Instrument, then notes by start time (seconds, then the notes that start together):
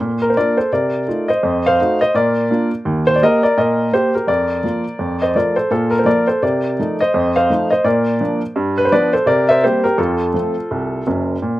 upright piano
0.01 A#2
0.22 A#4
0.30 C5
0.37 A#3 D4 F4 A#4 D5
0.57 A4 C5
0.72 C3 A#4 D5
1.07 A3 D#4 F4
1.28 C5 D#5
1.43 F2
1.66 C5 F5
1.80 A3 D#4 F#4
2.01 C5 D#5
2.15 A#2 A#4 D5
2.51 A#3 D4 F4
2.85 D#2
3.07 C5
3.16 D5
3.23 A#3 G4 A#4 D#5
3.43 A#4 D5
3.57 A#2 A#4 D#5
3.92 A#3 G4 C5
4.15 G4 A#4
4.27 F2 A#4 D5
4.64 F3 A#3 F4
4.99 F2
5.22 C5 D#5
5.35 F3 A3 F4 A#4 D5
5.56 A4 C5
5.71 A#2 F4 A4
5.91 A#4
5.99 C5
6.05 F3 A#3 F4 A#4 D5
6.27 A4 C5
6.43 C3 A#4 D5
6.79 F3 A3 D#4
7.00 C5 D#5
7.14 F2
7.36 C5 F5
7.50 F3 A3 D#4
7.70 C5 D#5
7.84 A#2 A#4 D5
8.21 F3 A#3 D4
8.56 G2
8.78 B4
8.85 C5
8.92 F3 B3 D4 B4 D5
9.13 A4 C5
9.26 C3 A#4 D5
9.49 C5 E5
9.63 G3 A#3 C4 G4 C5
9.84 G4 A#4
9.98 F2 F4 A4
10.34 F3 A3 C4
10.71 C2
11.07 F#1 F#2
11.42 A#2